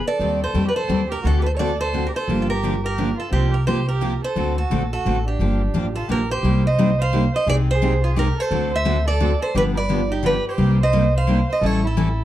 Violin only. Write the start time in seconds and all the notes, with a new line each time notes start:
0.07 A4
0.41 A4
0.66 G4
0.74 A4
1.09 G4
1.23 F#4
1.38 G4
1.43 A4
1.54 A4
1.58 A4
1.79 A4
2.08 G4
2.15 A4
2.41 F4
2.49 G4
2.83 G4
3.17 F4
3.30 C4
3.51 G4
3.68 G4
3.87 G4
4.23 A4
4.58 F#4
4.92 F#4
5.27 D4
5.95 F4
6.10 G4
6.31 G4
6.65 C5
6.98 C5
7.34 C5
7.47 G#4
7.69 G#4
8.04 F4
8.15 G4
8.37 A4
8.71 C5
9.07 A4
9.41 A4
9.55 G4
9.74 B4
10.09 D#4
10.26 G4
10.47 G4
10.80 C5
11.14 C5
11.49 C5
11.62 A4
11.84 E4